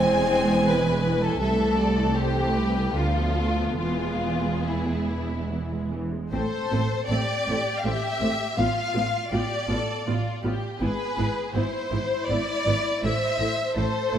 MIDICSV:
0, 0, Header, 1, 6, 480
1, 0, Start_track
1, 0, Key_signature, 0, "minor"
1, 0, Tempo, 747198
1, 903, Time_signature, 3, 2, 24, 8
1, 1382, Tempo, 797872
1, 1862, Tempo, 853485
1, 3302, Tempo, 798935
1, 4262, Tempo, 739827
1, 8853, End_track
2, 0, Start_track
2, 0, Title_t, "Violin section"
2, 0, Program_c, 0, 48
2, 0, Note_on_c, 0, 80, 92
2, 901, Note_off_c, 0, 80, 0
2, 910, Note_on_c, 0, 76, 71
2, 1138, Note_off_c, 0, 76, 0
2, 1145, Note_on_c, 0, 74, 63
2, 1385, Note_off_c, 0, 74, 0
2, 1390, Note_on_c, 0, 72, 60
2, 1622, Note_off_c, 0, 72, 0
2, 1622, Note_on_c, 0, 71, 57
2, 1856, Note_on_c, 0, 69, 57
2, 1865, Note_off_c, 0, 71, 0
2, 2336, Note_on_c, 0, 68, 54
2, 2337, Note_off_c, 0, 69, 0
2, 3552, Note_off_c, 0, 68, 0
2, 3793, Note_on_c, 0, 72, 91
2, 4237, Note_off_c, 0, 72, 0
2, 4259, Note_on_c, 0, 74, 94
2, 4699, Note_off_c, 0, 74, 0
2, 4703, Note_on_c, 0, 77, 62
2, 4744, Note_on_c, 0, 76, 96
2, 4746, Note_off_c, 0, 77, 0
2, 5215, Note_on_c, 0, 77, 92
2, 5218, Note_off_c, 0, 76, 0
2, 5691, Note_on_c, 0, 74, 88
2, 5697, Note_off_c, 0, 77, 0
2, 6423, Note_off_c, 0, 74, 0
2, 6667, Note_on_c, 0, 71, 85
2, 7117, Note_off_c, 0, 71, 0
2, 7136, Note_on_c, 0, 72, 85
2, 7611, Note_off_c, 0, 72, 0
2, 7623, Note_on_c, 0, 74, 97
2, 8104, Note_off_c, 0, 74, 0
2, 8108, Note_on_c, 0, 76, 94
2, 8575, Note_off_c, 0, 76, 0
2, 8586, Note_on_c, 0, 72, 90
2, 8853, Note_off_c, 0, 72, 0
2, 8853, End_track
3, 0, Start_track
3, 0, Title_t, "Violin section"
3, 0, Program_c, 1, 48
3, 0, Note_on_c, 1, 60, 98
3, 421, Note_off_c, 1, 60, 0
3, 431, Note_on_c, 1, 71, 82
3, 788, Note_off_c, 1, 71, 0
3, 789, Note_on_c, 1, 69, 87
3, 894, Note_off_c, 1, 69, 0
3, 901, Note_on_c, 1, 69, 88
3, 1372, Note_off_c, 1, 69, 0
3, 1383, Note_on_c, 1, 67, 87
3, 1854, Note_on_c, 1, 65, 76
3, 1863, Note_off_c, 1, 67, 0
3, 2324, Note_off_c, 1, 65, 0
3, 2330, Note_on_c, 1, 65, 71
3, 2808, Note_off_c, 1, 65, 0
3, 2816, Note_on_c, 1, 64, 57
3, 3551, Note_off_c, 1, 64, 0
3, 3798, Note_on_c, 1, 69, 70
3, 4240, Note_off_c, 1, 69, 0
3, 4266, Note_on_c, 1, 67, 81
3, 5218, Note_on_c, 1, 65, 69
3, 5220, Note_off_c, 1, 67, 0
3, 5689, Note_off_c, 1, 65, 0
3, 5695, Note_on_c, 1, 67, 63
3, 5934, Note_off_c, 1, 67, 0
3, 5952, Note_on_c, 1, 69, 64
3, 6185, Note_off_c, 1, 69, 0
3, 6194, Note_on_c, 1, 65, 62
3, 6427, Note_off_c, 1, 65, 0
3, 6429, Note_on_c, 1, 67, 68
3, 6663, Note_off_c, 1, 67, 0
3, 6669, Note_on_c, 1, 68, 69
3, 7144, Note_off_c, 1, 68, 0
3, 7146, Note_on_c, 1, 64, 61
3, 7379, Note_off_c, 1, 64, 0
3, 7387, Note_on_c, 1, 64, 67
3, 8093, Note_off_c, 1, 64, 0
3, 8106, Note_on_c, 1, 72, 67
3, 8582, Note_on_c, 1, 69, 71
3, 8584, Note_off_c, 1, 72, 0
3, 8853, Note_off_c, 1, 69, 0
3, 8853, End_track
4, 0, Start_track
4, 0, Title_t, "Viola section"
4, 0, Program_c, 2, 48
4, 0, Note_on_c, 2, 56, 74
4, 57, Note_on_c, 2, 52, 55
4, 174, Note_off_c, 2, 52, 0
4, 181, Note_on_c, 2, 52, 57
4, 295, Note_off_c, 2, 52, 0
4, 303, Note_on_c, 2, 52, 56
4, 419, Note_off_c, 2, 52, 0
4, 427, Note_on_c, 2, 52, 59
4, 538, Note_off_c, 2, 52, 0
4, 546, Note_on_c, 2, 52, 55
4, 656, Note_off_c, 2, 52, 0
4, 663, Note_on_c, 2, 52, 58
4, 776, Note_off_c, 2, 52, 0
4, 784, Note_on_c, 2, 52, 55
4, 899, Note_off_c, 2, 56, 0
4, 902, Note_off_c, 2, 52, 0
4, 904, Note_on_c, 2, 48, 67
4, 904, Note_on_c, 2, 57, 66
4, 1012, Note_off_c, 2, 48, 0
4, 1017, Note_on_c, 2, 52, 58
4, 1137, Note_off_c, 2, 52, 0
4, 1141, Note_on_c, 2, 48, 60
4, 1260, Note_off_c, 2, 48, 0
4, 1260, Note_on_c, 2, 52, 54
4, 1376, Note_on_c, 2, 48, 56
4, 1382, Note_off_c, 2, 52, 0
4, 1496, Note_off_c, 2, 48, 0
4, 1501, Note_on_c, 2, 52, 51
4, 1617, Note_on_c, 2, 48, 50
4, 1619, Note_off_c, 2, 52, 0
4, 1738, Note_off_c, 2, 48, 0
4, 1741, Note_on_c, 2, 52, 50
4, 1845, Note_off_c, 2, 57, 0
4, 1855, Note_on_c, 2, 50, 49
4, 1855, Note_on_c, 2, 59, 53
4, 1864, Note_off_c, 2, 52, 0
4, 1968, Note_off_c, 2, 50, 0
4, 1977, Note_on_c, 2, 53, 45
4, 2098, Note_off_c, 2, 53, 0
4, 2098, Note_on_c, 2, 57, 50
4, 2217, Note_on_c, 2, 53, 42
4, 2218, Note_off_c, 2, 57, 0
4, 2339, Note_off_c, 2, 53, 0
4, 2339, Note_on_c, 2, 52, 53
4, 2452, Note_off_c, 2, 52, 0
4, 2460, Note_on_c, 2, 56, 45
4, 2581, Note_off_c, 2, 56, 0
4, 2587, Note_on_c, 2, 52, 46
4, 2698, Note_on_c, 2, 56, 45
4, 2704, Note_off_c, 2, 52, 0
4, 2821, Note_off_c, 2, 56, 0
4, 2823, Note_on_c, 2, 52, 46
4, 2941, Note_on_c, 2, 56, 43
4, 2944, Note_off_c, 2, 52, 0
4, 3063, Note_off_c, 2, 56, 0
4, 3066, Note_on_c, 2, 52, 43
4, 3186, Note_off_c, 2, 52, 0
4, 3196, Note_on_c, 2, 56, 40
4, 3306, Note_on_c, 2, 52, 39
4, 3309, Note_off_c, 2, 56, 0
4, 3429, Note_on_c, 2, 56, 41
4, 3430, Note_off_c, 2, 52, 0
4, 3550, Note_on_c, 2, 52, 43
4, 3555, Note_off_c, 2, 56, 0
4, 3666, Note_off_c, 2, 59, 0
4, 3675, Note_off_c, 2, 52, 0
4, 3683, Note_on_c, 2, 56, 40
4, 3794, Note_on_c, 2, 57, 68
4, 3795, Note_on_c, 2, 60, 65
4, 3799, Note_off_c, 2, 56, 0
4, 3842, Note_off_c, 2, 57, 0
4, 3843, Note_off_c, 2, 60, 0
4, 4027, Note_on_c, 2, 57, 59
4, 4028, Note_on_c, 2, 60, 57
4, 4075, Note_off_c, 2, 57, 0
4, 4076, Note_off_c, 2, 60, 0
4, 4261, Note_on_c, 2, 57, 61
4, 4264, Note_on_c, 2, 60, 57
4, 4313, Note_off_c, 2, 57, 0
4, 4316, Note_off_c, 2, 60, 0
4, 4509, Note_on_c, 2, 57, 56
4, 4511, Note_on_c, 2, 60, 57
4, 4560, Note_off_c, 2, 57, 0
4, 4563, Note_off_c, 2, 60, 0
4, 4745, Note_on_c, 2, 57, 57
4, 4750, Note_on_c, 2, 60, 57
4, 4797, Note_off_c, 2, 57, 0
4, 4802, Note_off_c, 2, 60, 0
4, 4973, Note_on_c, 2, 60, 57
4, 4976, Note_on_c, 2, 57, 58
4, 5025, Note_off_c, 2, 60, 0
4, 5028, Note_off_c, 2, 57, 0
4, 5216, Note_on_c, 2, 59, 59
4, 5217, Note_on_c, 2, 65, 62
4, 5268, Note_off_c, 2, 59, 0
4, 5269, Note_off_c, 2, 65, 0
4, 5448, Note_on_c, 2, 65, 58
4, 5450, Note_on_c, 2, 59, 59
4, 5500, Note_off_c, 2, 65, 0
4, 5502, Note_off_c, 2, 59, 0
4, 5694, Note_on_c, 2, 65, 57
4, 5698, Note_on_c, 2, 59, 55
4, 5746, Note_off_c, 2, 65, 0
4, 5750, Note_off_c, 2, 59, 0
4, 5935, Note_on_c, 2, 59, 54
4, 5937, Note_on_c, 2, 65, 52
4, 5987, Note_off_c, 2, 59, 0
4, 5989, Note_off_c, 2, 65, 0
4, 6181, Note_on_c, 2, 59, 51
4, 6182, Note_on_c, 2, 65, 51
4, 6233, Note_off_c, 2, 59, 0
4, 6234, Note_off_c, 2, 65, 0
4, 6420, Note_on_c, 2, 59, 54
4, 6423, Note_on_c, 2, 65, 55
4, 6472, Note_off_c, 2, 59, 0
4, 6475, Note_off_c, 2, 65, 0
4, 6662, Note_on_c, 2, 59, 61
4, 6665, Note_on_c, 2, 64, 61
4, 6714, Note_off_c, 2, 59, 0
4, 6717, Note_off_c, 2, 64, 0
4, 6901, Note_on_c, 2, 64, 55
4, 6902, Note_on_c, 2, 59, 55
4, 6953, Note_off_c, 2, 64, 0
4, 6954, Note_off_c, 2, 59, 0
4, 7142, Note_on_c, 2, 59, 55
4, 7145, Note_on_c, 2, 64, 55
4, 7194, Note_off_c, 2, 59, 0
4, 7196, Note_off_c, 2, 64, 0
4, 7378, Note_on_c, 2, 59, 51
4, 7380, Note_on_c, 2, 64, 52
4, 7430, Note_off_c, 2, 59, 0
4, 7432, Note_off_c, 2, 64, 0
4, 7628, Note_on_c, 2, 59, 55
4, 7632, Note_on_c, 2, 64, 52
4, 7680, Note_off_c, 2, 59, 0
4, 7684, Note_off_c, 2, 64, 0
4, 7870, Note_on_c, 2, 64, 59
4, 7871, Note_on_c, 2, 59, 58
4, 7922, Note_off_c, 2, 64, 0
4, 7923, Note_off_c, 2, 59, 0
4, 8110, Note_on_c, 2, 57, 58
4, 8111, Note_on_c, 2, 64, 60
4, 8162, Note_off_c, 2, 57, 0
4, 8163, Note_off_c, 2, 64, 0
4, 8343, Note_on_c, 2, 57, 55
4, 8345, Note_on_c, 2, 64, 55
4, 8394, Note_off_c, 2, 57, 0
4, 8397, Note_off_c, 2, 64, 0
4, 8582, Note_on_c, 2, 57, 57
4, 8584, Note_on_c, 2, 64, 56
4, 8634, Note_off_c, 2, 57, 0
4, 8636, Note_off_c, 2, 64, 0
4, 8820, Note_on_c, 2, 64, 55
4, 8822, Note_on_c, 2, 57, 52
4, 8853, Note_off_c, 2, 57, 0
4, 8853, Note_off_c, 2, 64, 0
4, 8853, End_track
5, 0, Start_track
5, 0, Title_t, "Cello section"
5, 0, Program_c, 3, 48
5, 0, Note_on_c, 3, 40, 75
5, 875, Note_off_c, 3, 40, 0
5, 899, Note_on_c, 3, 36, 66
5, 1842, Note_off_c, 3, 36, 0
5, 1862, Note_on_c, 3, 38, 54
5, 2330, Note_off_c, 3, 38, 0
5, 2338, Note_on_c, 3, 40, 50
5, 3644, Note_off_c, 3, 40, 0
5, 3793, Note_on_c, 3, 45, 68
5, 3841, Note_off_c, 3, 45, 0
5, 4027, Note_on_c, 3, 45, 64
5, 4075, Note_off_c, 3, 45, 0
5, 4261, Note_on_c, 3, 45, 71
5, 4313, Note_off_c, 3, 45, 0
5, 4507, Note_on_c, 3, 45, 64
5, 4559, Note_off_c, 3, 45, 0
5, 4745, Note_on_c, 3, 45, 72
5, 4797, Note_off_c, 3, 45, 0
5, 4987, Note_on_c, 3, 45, 65
5, 5039, Note_off_c, 3, 45, 0
5, 5218, Note_on_c, 3, 45, 64
5, 5270, Note_off_c, 3, 45, 0
5, 5458, Note_on_c, 3, 45, 63
5, 5510, Note_off_c, 3, 45, 0
5, 5697, Note_on_c, 3, 45, 64
5, 5749, Note_off_c, 3, 45, 0
5, 5942, Note_on_c, 3, 45, 59
5, 5994, Note_off_c, 3, 45, 0
5, 6186, Note_on_c, 3, 45, 65
5, 6238, Note_off_c, 3, 45, 0
5, 6426, Note_on_c, 3, 45, 58
5, 6478, Note_off_c, 3, 45, 0
5, 6668, Note_on_c, 3, 44, 65
5, 6720, Note_off_c, 3, 44, 0
5, 6908, Note_on_c, 3, 44, 61
5, 6960, Note_off_c, 3, 44, 0
5, 7146, Note_on_c, 3, 44, 66
5, 7198, Note_off_c, 3, 44, 0
5, 7385, Note_on_c, 3, 44, 59
5, 7437, Note_off_c, 3, 44, 0
5, 7630, Note_on_c, 3, 44, 65
5, 7682, Note_off_c, 3, 44, 0
5, 7867, Note_on_c, 3, 44, 64
5, 7918, Note_off_c, 3, 44, 0
5, 8103, Note_on_c, 3, 45, 68
5, 8154, Note_off_c, 3, 45, 0
5, 8339, Note_on_c, 3, 45, 59
5, 8391, Note_off_c, 3, 45, 0
5, 8581, Note_on_c, 3, 45, 69
5, 8633, Note_off_c, 3, 45, 0
5, 8821, Note_on_c, 3, 45, 65
5, 8853, Note_off_c, 3, 45, 0
5, 8853, End_track
6, 0, Start_track
6, 0, Title_t, "Double bass section"
6, 0, Program_c, 4, 48
6, 0, Note_on_c, 4, 28, 78
6, 877, Note_off_c, 4, 28, 0
6, 903, Note_on_c, 4, 36, 72
6, 1844, Note_off_c, 4, 36, 0
6, 1866, Note_on_c, 4, 38, 62
6, 2332, Note_off_c, 4, 38, 0
6, 2341, Note_on_c, 4, 28, 52
6, 3646, Note_off_c, 4, 28, 0
6, 3793, Note_on_c, 4, 33, 74
6, 3841, Note_off_c, 4, 33, 0
6, 4025, Note_on_c, 4, 33, 63
6, 4073, Note_off_c, 4, 33, 0
6, 4264, Note_on_c, 4, 33, 64
6, 4316, Note_off_c, 4, 33, 0
6, 4504, Note_on_c, 4, 33, 65
6, 4556, Note_off_c, 4, 33, 0
6, 4743, Note_on_c, 4, 33, 68
6, 4795, Note_off_c, 4, 33, 0
6, 4979, Note_on_c, 4, 33, 64
6, 5031, Note_off_c, 4, 33, 0
6, 5215, Note_on_c, 4, 33, 67
6, 5266, Note_off_c, 4, 33, 0
6, 5461, Note_on_c, 4, 33, 60
6, 5513, Note_off_c, 4, 33, 0
6, 5699, Note_on_c, 4, 33, 63
6, 5751, Note_off_c, 4, 33, 0
6, 5943, Note_on_c, 4, 33, 64
6, 5995, Note_off_c, 4, 33, 0
6, 6185, Note_on_c, 4, 33, 65
6, 6237, Note_off_c, 4, 33, 0
6, 6428, Note_on_c, 4, 33, 61
6, 6479, Note_off_c, 4, 33, 0
6, 6669, Note_on_c, 4, 32, 67
6, 6721, Note_off_c, 4, 32, 0
6, 6907, Note_on_c, 4, 32, 62
6, 6959, Note_off_c, 4, 32, 0
6, 7146, Note_on_c, 4, 32, 64
6, 7198, Note_off_c, 4, 32, 0
6, 7384, Note_on_c, 4, 32, 64
6, 7436, Note_off_c, 4, 32, 0
6, 7628, Note_on_c, 4, 32, 66
6, 7680, Note_off_c, 4, 32, 0
6, 7871, Note_on_c, 4, 32, 62
6, 7923, Note_off_c, 4, 32, 0
6, 8105, Note_on_c, 4, 33, 70
6, 8157, Note_off_c, 4, 33, 0
6, 8343, Note_on_c, 4, 33, 59
6, 8395, Note_off_c, 4, 33, 0
6, 8579, Note_on_c, 4, 33, 67
6, 8631, Note_off_c, 4, 33, 0
6, 8823, Note_on_c, 4, 33, 61
6, 8853, Note_off_c, 4, 33, 0
6, 8853, End_track
0, 0, End_of_file